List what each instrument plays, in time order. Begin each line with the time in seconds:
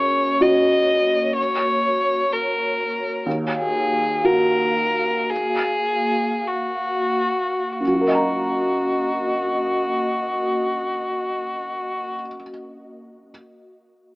Already playing: felt piano F#2, ambient pad A#3 F#4 C#5, violin C#5
0.41 felt piano F#4, violin D#5
1.37 violin C#5
2.32 violin A#4
3.26 felt piano D#2, ambient pad A#3 F#4 F5
3.58 violin G#4
4.24 felt piano F#4, violin A#4
5.30 violin G#4
6.47 violin F#4
7.80 felt piano F#2, ambient pad A#3 F#4 D#5, violin F#4
7.87 felt piano F#3
7.94 felt piano F#4
8.01 felt piano A#4
8.08 felt piano D#5
8.15 felt piano A#5